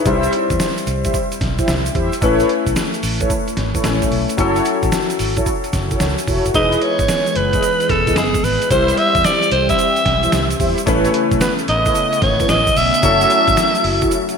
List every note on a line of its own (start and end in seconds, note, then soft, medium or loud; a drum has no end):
0.00 0.23 B4 medium
0.05 0.26 C2 loud
0.05 2.18 G3 medium
0.05 2.18 C4 medium
0.05 0.15 D#4 medium
0.05 0.31 E4 medium
0.05 0.31 G4 medium
0.05 0.31 C5 medium
0.05 2.19 C5 medium
0.05 0.31 E5 loud
0.05 kick loud
0.05 closed hi-hat medium
0.05 shaker medium
0.13 2.21 E4 medium
0.23 closed hi-hat medium
0.23 shaker medium
0.33 closed hi-hat medium
0.50 0.57 E2 medium
0.50 kick medium
0.50 closed hi-hat soft
0.50 shaker medium
0.60 snare loud
0.60 closed hi-hat medium
0.60 shaker medium
0.77 closed hi-hat soft
0.77 shaker medium
0.87 1.07 C2 medium
0.87 closed hi-hat medium
0.87 shaker soft
1.04 1.15 E4 medium
1.04 1.15 G4 medium
1.04 1.15 C5 medium
1.04 1.15 E5 loud
1.04 kick medium
1.04 closed hi-hat medium
1.04 shaker soft
1.14 kick medium
1.14 closed hi-hat medium
1.14 shaker medium
1.32 closed hi-hat soft
1.32 shaker soft
1.41 1.61 B1 medium
1.41 kick medium
1.41 snare medium
1.41 closed hi-hat medium
1.58 1.69 E4 medium
1.58 1.69 G4 medium
1.58 1.69 C5 medium
1.58 1.69 E5 medium
1.58 kick medium
1.58 closed hi-hat medium
1.58 shaker medium
1.68 1.88 C2 medium
1.68 snare loud
1.68 closed hi-hat medium
1.68 shaker medium
1.86 closed hi-hat soft
1.86 shaker medium
1.94 2.08 E2 medium
1.94 2.13 E4 medium
1.94 2.13 G4 medium
1.94 2.13 C5 medium
1.94 2.14 E5 medium
1.94 kick loud
1.94 closed hi-hat medium
2.13 closed hi-hat medium
2.13 shaker soft
2.21 2.42 A1 loud
2.21 3.80 A3 medium
2.21 3.81 C#4 medium
2.21 2.47 E4 medium
2.21 3.81 E4 medium
2.21 2.47 A4 medium
2.21 2.47 B4 medium
2.21 3.82 B4 medium
2.21 2.48 C#5 loud
2.21 kick loud
2.21 closed hi-hat medium
2.21 shaker medium
2.40 closed hi-hat medium
2.40 shaker soft
2.49 closed hi-hat medium
2.67 2.74 B1 medium
2.67 kick medium
2.67 closed hi-hat medium
2.67 shaker medium
2.76 snare loud
2.76 closed hi-hat medium
2.76 shaker medium
2.94 closed hi-hat soft
2.94 shaker soft
3.03 3.23 A1 medium
3.03 open hi-hat medium
3.03 shaker soft
3.20 3.31 E4 medium
3.20 3.31 A4 medium
3.20 3.31 B4 medium
3.20 3.32 C#5 medium
3.20 kick medium
3.20 closed hi-hat medium
3.20 shaker soft
3.30 kick loud
3.30 closed hi-hat medium
3.30 shaker medium
3.48 closed hi-hat soft
3.48 shaker soft
3.57 3.77 G#1 medium
3.57 snare medium
3.57 closed hi-hat medium
3.74 3.85 E4 medium
3.74 3.85 A4 medium
3.74 3.85 B4 medium
3.74 3.86 C#5 medium
3.74 kick medium
3.74 closed hi-hat medium
3.74 shaker medium
3.84 4.04 A1 medium
3.84 4.38 A3 medium
3.84 4.37 C#4 soft
3.84 4.37 E4 medium
3.84 4.39 C#5 medium
3.84 snare loud
3.84 closed hi-hat medium
3.84 shaker medium
4.02 kick medium
4.02 closed hi-hat soft
4.02 shaker medium
4.11 4.25 B1 medium
4.11 open hi-hat medium
4.29 closed hi-hat medium
4.29 shaker soft
4.37 4.58 F#1 loud
4.37 6.50 F#3 medium
4.37 6.50 C#4 medium
4.37 4.63 E4 medium
4.37 6.51 E4 medium
4.37 4.64 F#4 medium
4.37 4.64 A4 medium
4.37 6.51 A4 medium
4.37 4.64 C#5 loud
4.37 kick loud
4.37 closed hi-hat medium
4.37 shaker medium
4.56 closed hi-hat medium
4.56 shaker soft
4.65 closed hi-hat medium
4.65 shaker soft
4.83 4.90 A1 medium
4.83 kick medium
4.83 closed hi-hat medium
4.83 shaker medium
4.92 snare loud
4.92 closed hi-hat medium
4.92 shaker medium
5.10 closed hi-hat soft
5.10 shaker medium
5.19 5.40 G#1 medium
5.19 open hi-hat medium
5.19 shaker soft
5.37 5.48 E4 medium
5.37 5.48 F#4 medium
5.37 5.48 A4 medium
5.37 5.48 C#5 medium
5.37 kick loud
5.37 closed hi-hat medium
5.37 shaker medium
5.46 kick medium
5.46 closed hi-hat medium
5.46 shaker medium
5.64 closed hi-hat soft
5.64 shaker soft
5.73 5.93 F#1 medium
5.73 kick medium
5.73 snare medium
5.73 closed hi-hat medium
5.73 shaker soft
5.90 6.02 E4 medium
5.90 6.02 F#4 medium
5.90 6.02 A4 medium
5.90 6.02 C#5 medium
5.90 kick medium
5.90 closed hi-hat medium
5.90 shaker medium
6.00 6.14 C#2 medium
6.00 snare loud
6.00 closed hi-hat medium
6.00 shaker medium
6.18 closed hi-hat medium
6.18 shaker medium
6.27 6.41 E1 medium
6.27 6.46 E4 medium
6.27 6.46 F#4 medium
6.27 6.46 A4 medium
6.27 6.46 C#5 medium
6.27 kick loud
6.27 open hi-hat medium
6.27 shaker soft
6.45 6.52 F#1 medium
6.45 closed hi-hat medium
6.45 shaker soft
6.54 6.75 E1 loud
6.54 8.68 E3 medium
6.54 8.66 G#3 medium
6.54 8.68 G#3 medium
6.54 8.68 B3 medium
6.54 8.67 D#4 medium
6.54 6.80 E4 medium
6.54 8.67 E4 medium
6.54 6.80 G#4 medium
6.54 8.68 G#4 medium
6.54 6.80 B4 medium
6.54 8.68 B4 medium
6.54 6.80 D#5 loud
6.54 6.77 D#5 loud
6.54 kick loud
6.54 closed hi-hat medium
6.54 shaker medium
6.72 closed hi-hat medium
6.72 shaker soft
6.77 6.84 D#5 medium
6.82 7.38 C#5 loud
6.82 closed hi-hat medium
6.99 7.06 G#1 medium
6.99 kick medium
6.99 closed hi-hat medium
6.99 shaker soft
7.08 snare loud
7.08 closed hi-hat medium
7.08 shaker medium
7.26 closed hi-hat soft
7.26 shaker medium
7.35 7.56 F#1 medium
7.35 7.91 B4 loud
7.35 closed hi-hat medium
7.53 7.64 E4 medium
7.53 7.64 G#4 medium
7.53 7.64 B4 medium
7.53 7.64 D#5 medium
7.53 kick medium
7.53 closed hi-hat medium
7.53 shaker soft
7.63 closed hi-hat medium
7.63 shaker medium
7.80 closed hi-hat soft
7.80 shaker soft
7.89 8.17 E1 medium
7.89 8.19 A4 medium
7.89 kick medium
7.89 snare medium
7.89 closed hi-hat medium
8.07 8.18 E4 medium
8.07 8.18 G#4 medium
8.07 8.18 B4 medium
8.07 8.18 D#5 medium
8.07 kick medium
8.07 closed hi-hat medium
8.07 shaker medium
8.16 8.37 F#1 medium
8.16 8.46 G#4 medium
8.16 snare loud
8.16 closed hi-hat medium
8.16 shaker medium
8.34 kick medium
8.34 closed hi-hat medium
8.34 shaker medium
8.44 8.57 G#1 loud
8.44 8.70 B4 medium
8.44 open hi-hat medium
8.44 shaker soft
8.62 closed hi-hat medium
8.62 shaker soft
8.70 8.91 C2 loud
8.70 10.85 E3 medium
8.70 10.82 G3 medium
8.70 10.85 G3 medium
8.70 10.83 C4 medium
8.70 10.85 C4 medium
8.70 8.96 E4 medium
8.70 10.83 E4 medium
8.70 8.96 G4 medium
8.70 10.85 G4 medium
8.70 8.96 C5 medium
8.70 8.99 C5 loud
8.70 10.84 C5 medium
8.70 8.96 E5 loud
8.70 kick loud
8.70 closed hi-hat medium
8.70 shaker medium
8.88 closed hi-hat medium
8.88 shaker soft
8.97 9.26 E5 loud
8.97 closed hi-hat medium
9.15 9.22 E2 medium
9.15 kick medium
9.15 closed hi-hat medium
9.15 shaker medium
9.24 9.52 D5 loud
9.24 snare loud
9.24 closed hi-hat medium
9.24 shaker medium
9.42 closed hi-hat medium
9.42 shaker soft
9.51 9.72 C2 medium
9.51 9.68 C5 loud
9.51 closed hi-hat medium
9.69 9.80 E4 medium
9.69 9.80 G4 medium
9.69 9.80 C5 medium
9.69 9.80 E5 medium
9.69 10.56 E5 loud
9.69 kick medium
9.69 closed hi-hat medium
9.69 shaker soft
9.79 closed hi-hat medium
9.79 shaker medium
9.96 closed hi-hat soft
9.96 shaker soft
10.06 10.26 B1 medium
10.06 kick medium
10.06 snare medium
10.06 closed hi-hat medium
10.23 10.34 E4 medium
10.23 10.34 G4 medium
10.23 10.34 C5 medium
10.23 10.34 E5 medium
10.23 closed hi-hat medium
10.23 shaker medium
10.32 10.53 C2 loud
10.32 snare loud
10.32 closed hi-hat medium
10.32 shaker medium
10.50 closed hi-hat medium
10.50 shaker medium
10.59 10.73 E2 medium
10.59 10.78 E4 medium
10.59 10.78 G4 medium
10.59 10.78 C5 medium
10.59 10.78 E5 medium
10.59 kick loud
10.59 open hi-hat medium
10.59 shaker soft
10.78 closed hi-hat medium
10.78 shaker soft
10.86 11.07 A1 loud
10.86 14.38 C#3 medium
10.86 12.99 A3 medium
10.86 14.38 A3 medium
10.86 13.01 B3 medium
10.86 12.99 C#4 medium
10.86 11.12 E4 loud
10.86 13.01 E4 medium
10.86 12.99 E4 medium
10.86 11.12 A4 medium
10.86 11.12 B4 medium
10.86 13.00 B4 medium
10.86 11.12 C#5 loud
10.86 kick loud
10.86 closed hi-hat medium
10.86 shaker medium
11.05 closed hi-hat soft
11.05 shaker soft
11.14 closed hi-hat medium
11.31 11.38 B1 medium
11.31 kick medium
11.31 closed hi-hat medium
11.31 shaker medium
11.41 11.54 B4 medium
11.41 snare loud
11.41 closed hi-hat medium
11.41 shaker medium
11.59 closed hi-hat medium
11.59 shaker medium
11.68 11.88 A1 medium
11.68 12.19 D#5 loud
11.68 closed hi-hat medium
11.86 11.96 E4 medium
11.86 11.96 A4 medium
11.86 11.97 B4 medium
11.86 11.97 C#5 medium
11.86 kick medium
11.86 closed hi-hat medium
11.86 shaker medium
11.95 closed hi-hat medium
11.95 shaker medium
12.13 closed hi-hat soft
12.13 shaker soft
12.22 12.42 G#1 medium
12.22 12.51 C#5 loud
12.22 kick medium
12.22 snare medium
12.22 closed hi-hat medium
12.40 12.50 E4 medium
12.40 12.50 A4 medium
12.40 12.51 B4 medium
12.40 12.51 C#5 medium
12.40 kick medium
12.40 closed hi-hat medium
12.40 shaker medium
12.49 12.69 A1 loud
12.49 12.78 D#5 loud
12.49 snare loud
12.49 closed hi-hat medium
12.49 shaker medium
12.67 kick medium
12.67 closed hi-hat soft
12.67 shaker medium
12.76 12.90 B1 loud
12.76 14.38 E5 loud
12.76 open hi-hat medium
12.76 shaker soft
12.94 closed hi-hat medium
12.94 shaker medium
13.02 13.23 F#1 loud
13.02 14.38 F#3 medium
13.02 14.38 C#4 medium
13.02 13.28 E4 medium
13.02 14.38 E4 medium
13.02 13.28 F#4 medium
13.02 13.29 A4 medium
13.02 14.38 A4 medium
13.02 13.29 C#5 loud
13.02 kick loud
13.02 closed hi-hat medium
13.02 shaker medium
13.21 closed hi-hat medium
13.21 shaker medium
13.30 closed hi-hat medium
13.30 shaker soft
13.48 13.55 G#1 medium
13.48 kick medium
13.48 closed hi-hat medium
13.48 shaker medium
13.57 snare loud
13.57 closed hi-hat medium
13.57 shaker medium
13.75 closed hi-hat soft
13.75 shaker soft
13.84 14.04 F#1 loud
13.84 open hi-hat medium
14.02 14.13 E4 medium
14.02 14.13 F#4 medium
14.02 14.13 A4 medium
14.02 14.13 C#5 medium
14.02 kick loud
14.02 closed hi-hat medium
14.02 shaker medium
14.11 closed hi-hat medium
14.11 shaker medium
14.29 closed hi-hat soft
14.29 shaker soft